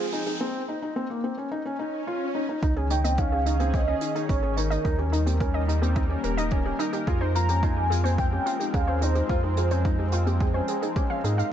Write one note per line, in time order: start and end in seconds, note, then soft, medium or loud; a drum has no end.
0.00 0.41 F3 medium
0.00 0.41 G#3 medium
0.00 0.41 C4 medium
0.00 0.37 G#4 medium
0.00 0.41 G5 medium
0.00 riser medium
0.12 0.23 D#4 medium
0.12 0.22 F4 medium
0.12 closed hi-hat medium
0.26 0.37 D#4 medium
0.26 0.40 G4 medium
0.26 closed hi-hat medium
0.41 0.60 C4 medium
0.68 0.78 D#4 medium
0.82 0.92 D#4 medium
0.96 1.06 C4 medium
1.10 1.20 A#3 medium
1.24 1.34 C4 medium
1.38 1.48 C#4 medium
1.51 1.62 D#4 medium
1.51 swell medium
1.66 1.76 C#4 medium
1.79 1.99 D#4 medium
2.07 2.27 F4 medium
2.35 2.45 D#4 medium
2.49 2.59 D#4 medium
2.62 3.95 C#2 medium
2.62 7.07 D#3 medium
2.62 2.73 D#4 medium
2.62 2.68 D#4 medium
2.62 kick loud
2.62 closed hi-hat soft
2.76 2.86 C#4 medium
2.76 5.74 C#4 medium
2.76 2.82 G#4 medium
2.90 3.01 D#4 medium
2.90 3.00 C#5 medium
2.90 3.20 G5 loud
2.90 closed hi-hat medium
3.04 3.14 C4 medium
3.04 3.10 D#5 loud
3.04 closed hi-hat medium
3.18 3.38 C#4 medium
3.18 3.28 D#4 medium
3.18 3.75 F5 loud
3.18 kick loud
3.18 closed hi-hat soft
3.32 4.85 G#4 medium
3.32 3.46 G#4 medium
3.46 3.52 D#4 loud
3.46 3.56 D#4 medium
3.46 closed hi-hat medium
3.60 3.80 C4 medium
3.60 3.66 G#4 medium
3.60 closed hi-hat soft
3.74 3.83 C#5 medium
3.74 4.29 D#5 loud
3.74 kick loud
3.74 closed hi-hat soft
3.88 4.08 C#4 medium
3.88 3.93 D#5 loud
4.01 4.11 D#4 medium
4.01 closed hi-hat medium
4.15 4.25 D#4 medium
4.15 4.29 G#4 medium
4.15 closed hi-hat soft
4.29 4.78 G#1 medium
4.29 4.39 C#4 medium
4.29 4.35 D#4 medium
4.29 4.59 C#5 medium
4.29 kick loud
4.29 closed hi-hat medium
4.43 4.53 C#4 medium
4.43 4.49 G#4 medium
4.57 4.67 D#4 medium
4.57 5.68 A#4 medium
4.57 4.66 C#5 medium
4.57 closed hi-hat medium
4.70 4.81 D#4 medium
4.70 4.77 D#5 loud
4.70 closed hi-hat medium
4.85 6.17 D#2 loud
4.85 4.94 D#4 medium
4.85 4.95 D#4 loud
4.85 kick loud
4.85 closed hi-hat medium
4.98 5.09 C#4 medium
4.98 5.12 G4 medium
5.03 7.07 G3 medium
5.12 5.18 D#4 medium
5.12 5.23 D#4 medium
5.12 closed hi-hat medium
5.26 5.37 C4 medium
5.26 5.32 G4 medium
5.26 closed hi-hat medium
5.40 8.53 A#3 medium
5.40 5.60 C#4 medium
5.40 5.50 A#4 medium
5.40 kick loud
5.40 closed hi-hat medium
5.54 5.60 D#5 loud
5.65 5.78 D#4 medium
5.65 11.52 A#4 medium
5.69 closed hi-hat medium
5.82 6.02 C4 medium
5.82 5.95 G4 medium
5.82 closed hi-hat soft
5.96 6.02 D#4 loud
5.96 kick loud
5.96 closed hi-hat soft
6.10 6.30 C#4 medium
6.10 6.16 G4 medium
6.24 6.73 D#1 medium
6.24 6.33 A#4 medium
6.24 closed hi-hat medium
6.38 6.48 D#4 medium
6.38 6.43 D#5 loud
6.38 closed hi-hat medium
6.51 6.62 C#4 medium
6.51 6.61 D#4 medium
6.51 kick loud
6.51 closed hi-hat soft
6.65 6.76 C#4 medium
6.65 6.79 G4 medium
6.79 6.85 D#4 loud
6.79 6.89 D#4 medium
6.79 closed hi-hat medium
6.93 7.03 D#4 medium
6.93 6.99 G4 medium
6.93 closed hi-hat medium
7.07 8.39 F2 loud
7.07 11.52 F3 medium
7.07 7.17 F4 medium
7.07 7.17 G#4 medium
7.07 kick loud
7.07 closed hi-hat soft
7.21 7.31 D#4 medium
7.21 7.27 C5 loud
7.33 11.53 G#3 medium
7.33 7.44 F4 medium
7.33 7.45 F4 medium
7.33 7.65 A#5 loud
7.33 closed hi-hat medium
7.38 11.52 C4 medium
7.49 7.59 C#4 medium
7.49 7.62 G4 medium
7.49 closed hi-hat medium
7.63 7.83 D#4 medium
7.63 7.68 F4 loud
7.63 8.20 G#5 loud
7.63 kick loud
7.63 closed hi-hat soft
7.77 7.82 G4 medium
7.90 8.01 F4 medium
7.90 8.00 G#4 medium
7.90 closed hi-hat medium
8.04 8.24 C4 medium
8.04 8.10 C5 loud
8.04 closed hi-hat medium
8.18 8.28 F4 medium
8.18 8.76 G5 loud
8.18 kick loud
8.18 closed hi-hat soft
8.32 8.52 C#4 medium
8.32 8.45 G4 medium
8.46 8.52 F4 loud
8.46 closed hi-hat medium
8.60 8.70 D#4 medium
8.60 8.66 G4 medium
8.60 closed hi-hat medium
8.74 9.23 D#2 medium
8.74 8.84 C#4 medium
8.74 8.83 G#4 medium
8.74 9.04 F5 medium
8.74 kick loud
8.74 closed hi-hat medium
8.88 8.98 C#4 medium
8.88 8.93 C5 loud
9.01 9.12 D#4 medium
9.01 9.11 F4 medium
9.01 10.13 C5 medium
9.01 closed hi-hat medium
9.15 9.26 D#4 medium
9.15 9.29 G4 medium
9.15 closed hi-hat medium
9.29 10.61 F2 medium
9.29 9.35 F4 loud
9.29 9.40 F4 medium
9.29 kick loud
9.29 closed hi-hat medium
9.43 9.53 D#4 medium
9.43 9.49 G4 medium
9.57 9.67 F4 medium
9.57 9.67 G#4 medium
9.57 closed hi-hat medium
9.71 9.81 C#4 medium
9.71 9.77 C5 loud
9.71 closed hi-hat medium
9.85 10.05 D#4 medium
9.85 9.94 F4 medium
9.85 kick loud
9.85 closed hi-hat soft
9.99 10.12 G4 medium
10.12 10.23 F4 medium
10.12 10.18 F4 loud
10.12 closed hi-hat medium
10.26 10.46 C4 medium
10.26 10.32 G4 medium
10.26 closed hi-hat soft
10.41 10.50 G#4 medium
10.41 kick loud
10.41 closed hi-hat soft
10.54 10.74 C#4 medium
10.54 10.60 C5 loud
10.68 10.78 G#4 medium
10.68 closed hi-hat medium
10.82 10.92 D#4 medium
10.82 10.88 G#4 medium
10.82 closed hi-hat medium
10.96 11.06 C#4 medium
10.96 11.02 G4 loud
10.96 kick loud
10.96 closed hi-hat medium
11.10 11.20 C#4 medium
11.10 11.23 F5 medium
11.24 11.43 G#2 medium
11.24 11.34 D#4 medium
11.24 11.37 G#4 medium
11.24 closed hi-hat medium
11.38 11.48 D#4 medium
11.38 11.44 F5 medium
11.38 closed hi-hat medium